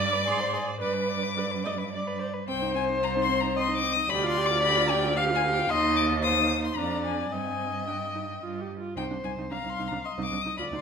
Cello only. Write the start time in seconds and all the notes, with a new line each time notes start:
Already playing: G2
0.27 G#2
0.82 G2
2.49 C2
4.10 D2
5.70 D#2
6.78 F2
7.32 G2
8.43 G2
8.97 C2
9.11 C2
9.24 C2
9.38 C2
9.52 C2
9.65 C2
9.79 C2
9.92 C2
10.19 C2
10.32 C2
10.45 C2
10.58 D2
10.72 D2